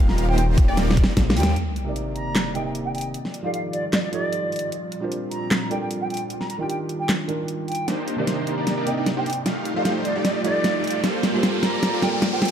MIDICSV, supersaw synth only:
0, 0, Header, 1, 2, 480
1, 0, Start_track
1, 0, Tempo, 394737
1, 1903, Time_signature, 4, 2, 24, 8
1, 15213, End_track
2, 0, Start_track
2, 0, Title_t, "Supersaw synth"
2, 0, Program_c, 0, 81
2, 0, Note_on_c, 0, 58, 75
2, 0, Note_on_c, 0, 63, 69
2, 0, Note_on_c, 0, 65, 69
2, 0, Note_on_c, 0, 67, 71
2, 0, Note_on_c, 0, 77, 84
2, 320, Note_off_c, 0, 65, 0
2, 320, Note_off_c, 0, 67, 0
2, 321, Note_off_c, 0, 58, 0
2, 321, Note_off_c, 0, 63, 0
2, 321, Note_off_c, 0, 77, 0
2, 349, Note_on_c, 0, 65, 90
2, 349, Note_on_c, 0, 72, 109
2, 350, Note_on_c, 0, 58, 100
2, 350, Note_on_c, 0, 63, 89
2, 350, Note_on_c, 0, 67, 93
2, 799, Note_off_c, 0, 65, 0
2, 799, Note_off_c, 0, 72, 0
2, 800, Note_off_c, 0, 58, 0
2, 800, Note_off_c, 0, 63, 0
2, 800, Note_off_c, 0, 67, 0
2, 830, Note_on_c, 0, 58, 91
2, 830, Note_on_c, 0, 65, 82
2, 831, Note_on_c, 0, 63, 84
2, 831, Note_on_c, 0, 67, 83
2, 831, Note_on_c, 0, 74, 102
2, 1155, Note_off_c, 0, 58, 0
2, 1155, Note_off_c, 0, 65, 0
2, 1155, Note_off_c, 0, 67, 0
2, 1155, Note_off_c, 0, 74, 0
2, 1156, Note_off_c, 0, 63, 0
2, 1180, Note_on_c, 0, 58, 90
2, 1180, Note_on_c, 0, 65, 82
2, 1180, Note_on_c, 0, 67, 80
2, 1181, Note_on_c, 0, 63, 82
2, 1875, Note_off_c, 0, 58, 0
2, 1875, Note_off_c, 0, 63, 0
2, 1875, Note_off_c, 0, 65, 0
2, 1875, Note_off_c, 0, 67, 0
2, 9581, Note_on_c, 0, 62, 80
2, 9581, Note_on_c, 0, 67, 80
2, 9582, Note_on_c, 0, 58, 87
2, 9582, Note_on_c, 0, 63, 79
2, 9582, Note_on_c, 0, 72, 94
2, 9920, Note_off_c, 0, 58, 0
2, 9920, Note_off_c, 0, 62, 0
2, 9920, Note_off_c, 0, 63, 0
2, 9920, Note_off_c, 0, 67, 0
2, 9920, Note_off_c, 0, 72, 0
2, 9949, Note_on_c, 0, 58, 90
2, 9949, Note_on_c, 0, 63, 82
2, 9949, Note_on_c, 0, 67, 84
2, 9949, Note_on_c, 0, 72, 99
2, 9950, Note_on_c, 0, 62, 84
2, 10399, Note_off_c, 0, 58, 0
2, 10399, Note_off_c, 0, 62, 0
2, 10399, Note_off_c, 0, 63, 0
2, 10399, Note_off_c, 0, 67, 0
2, 10399, Note_off_c, 0, 72, 0
2, 10428, Note_on_c, 0, 62, 67
2, 10428, Note_on_c, 0, 63, 70
2, 10428, Note_on_c, 0, 67, 71
2, 10428, Note_on_c, 0, 74, 85
2, 10429, Note_on_c, 0, 58, 77
2, 10639, Note_off_c, 0, 58, 0
2, 10639, Note_off_c, 0, 62, 0
2, 10639, Note_off_c, 0, 63, 0
2, 10639, Note_off_c, 0, 67, 0
2, 10639, Note_off_c, 0, 74, 0
2, 10668, Note_on_c, 0, 63, 90
2, 10668, Note_on_c, 0, 67, 92
2, 10668, Note_on_c, 0, 74, 108
2, 10669, Note_on_c, 0, 58, 98
2, 10669, Note_on_c, 0, 62, 87
2, 10879, Note_off_c, 0, 58, 0
2, 10879, Note_off_c, 0, 62, 0
2, 10879, Note_off_c, 0, 63, 0
2, 10879, Note_off_c, 0, 67, 0
2, 10879, Note_off_c, 0, 74, 0
2, 10909, Note_on_c, 0, 62, 73
2, 10909, Note_on_c, 0, 74, 86
2, 10910, Note_on_c, 0, 58, 80
2, 10910, Note_on_c, 0, 63, 74
2, 10910, Note_on_c, 0, 67, 72
2, 11075, Note_off_c, 0, 62, 0
2, 11075, Note_off_c, 0, 67, 0
2, 11075, Note_off_c, 0, 74, 0
2, 11076, Note_off_c, 0, 58, 0
2, 11076, Note_off_c, 0, 63, 0
2, 11149, Note_on_c, 0, 63, 77
2, 11149, Note_on_c, 0, 72, 91
2, 11150, Note_on_c, 0, 58, 84
2, 11150, Note_on_c, 0, 62, 76
2, 11150, Note_on_c, 0, 67, 76
2, 11315, Note_off_c, 0, 63, 0
2, 11315, Note_off_c, 0, 72, 0
2, 11316, Note_off_c, 0, 58, 0
2, 11316, Note_off_c, 0, 62, 0
2, 11316, Note_off_c, 0, 67, 0
2, 11500, Note_on_c, 0, 57, 73
2, 11500, Note_on_c, 0, 65, 68
2, 11500, Note_on_c, 0, 67, 68
2, 11500, Note_on_c, 0, 77, 80
2, 11501, Note_on_c, 0, 63, 67
2, 11839, Note_off_c, 0, 57, 0
2, 11839, Note_off_c, 0, 65, 0
2, 11839, Note_off_c, 0, 67, 0
2, 11839, Note_off_c, 0, 77, 0
2, 11840, Note_off_c, 0, 63, 0
2, 11870, Note_on_c, 0, 72, 109
2, 11871, Note_on_c, 0, 57, 96
2, 11871, Note_on_c, 0, 63, 87
2, 11871, Note_on_c, 0, 65, 86
2, 11871, Note_on_c, 0, 67, 90
2, 12320, Note_off_c, 0, 57, 0
2, 12320, Note_off_c, 0, 63, 0
2, 12320, Note_off_c, 0, 65, 0
2, 12320, Note_off_c, 0, 67, 0
2, 12320, Note_off_c, 0, 72, 0
2, 12348, Note_on_c, 0, 57, 90
2, 12348, Note_on_c, 0, 63, 80
2, 12348, Note_on_c, 0, 65, 81
2, 12348, Note_on_c, 0, 67, 82
2, 12349, Note_on_c, 0, 74, 97
2, 12674, Note_off_c, 0, 57, 0
2, 12674, Note_off_c, 0, 63, 0
2, 12674, Note_off_c, 0, 65, 0
2, 12674, Note_off_c, 0, 67, 0
2, 12674, Note_off_c, 0, 74, 0
2, 12700, Note_on_c, 0, 63, 80
2, 12700, Note_on_c, 0, 74, 97
2, 12701, Note_on_c, 0, 57, 86
2, 12701, Note_on_c, 0, 65, 78
2, 12701, Note_on_c, 0, 67, 77
2, 13395, Note_off_c, 0, 57, 0
2, 13395, Note_off_c, 0, 63, 0
2, 13395, Note_off_c, 0, 65, 0
2, 13395, Note_off_c, 0, 67, 0
2, 13395, Note_off_c, 0, 74, 0
2, 13420, Note_on_c, 0, 69, 80
2, 13421, Note_on_c, 0, 58, 86
2, 13421, Note_on_c, 0, 65, 81
2, 13421, Note_on_c, 0, 67, 82
2, 13421, Note_on_c, 0, 72, 97
2, 13759, Note_off_c, 0, 67, 0
2, 13759, Note_off_c, 0, 69, 0
2, 13759, Note_off_c, 0, 72, 0
2, 13760, Note_off_c, 0, 58, 0
2, 13760, Note_off_c, 0, 65, 0
2, 13789, Note_on_c, 0, 67, 85
2, 13789, Note_on_c, 0, 72, 106
2, 13790, Note_on_c, 0, 58, 95
2, 13790, Note_on_c, 0, 65, 84
2, 13790, Note_on_c, 0, 69, 84
2, 14239, Note_off_c, 0, 67, 0
2, 14239, Note_off_c, 0, 72, 0
2, 14240, Note_off_c, 0, 58, 0
2, 14240, Note_off_c, 0, 65, 0
2, 14240, Note_off_c, 0, 69, 0
2, 14269, Note_on_c, 0, 58, 74
2, 14269, Note_on_c, 0, 67, 71
2, 14269, Note_on_c, 0, 69, 70
2, 14269, Note_on_c, 0, 74, 87
2, 14270, Note_on_c, 0, 65, 70
2, 14479, Note_off_c, 0, 58, 0
2, 14479, Note_off_c, 0, 67, 0
2, 14479, Note_off_c, 0, 69, 0
2, 14479, Note_off_c, 0, 74, 0
2, 14480, Note_off_c, 0, 65, 0
2, 14509, Note_on_c, 0, 67, 92
2, 14510, Note_on_c, 0, 65, 88
2, 14510, Note_on_c, 0, 69, 91
2, 14510, Note_on_c, 0, 74, 110
2, 14511, Note_on_c, 0, 58, 97
2, 14719, Note_off_c, 0, 67, 0
2, 14720, Note_off_c, 0, 58, 0
2, 14720, Note_off_c, 0, 65, 0
2, 14720, Note_off_c, 0, 69, 0
2, 14720, Note_off_c, 0, 74, 0
2, 14750, Note_on_c, 0, 58, 78
2, 14750, Note_on_c, 0, 65, 73
2, 14750, Note_on_c, 0, 67, 72
2, 14750, Note_on_c, 0, 74, 90
2, 14751, Note_on_c, 0, 69, 73
2, 14915, Note_off_c, 0, 67, 0
2, 14916, Note_off_c, 0, 58, 0
2, 14916, Note_off_c, 0, 65, 0
2, 14916, Note_off_c, 0, 69, 0
2, 14916, Note_off_c, 0, 74, 0
2, 14990, Note_on_c, 0, 65, 78
2, 14990, Note_on_c, 0, 67, 78
2, 14990, Note_on_c, 0, 69, 76
2, 14990, Note_on_c, 0, 72, 94
2, 14991, Note_on_c, 0, 58, 83
2, 15155, Note_off_c, 0, 69, 0
2, 15156, Note_off_c, 0, 58, 0
2, 15156, Note_off_c, 0, 65, 0
2, 15156, Note_off_c, 0, 67, 0
2, 15156, Note_off_c, 0, 72, 0
2, 15213, End_track
0, 0, End_of_file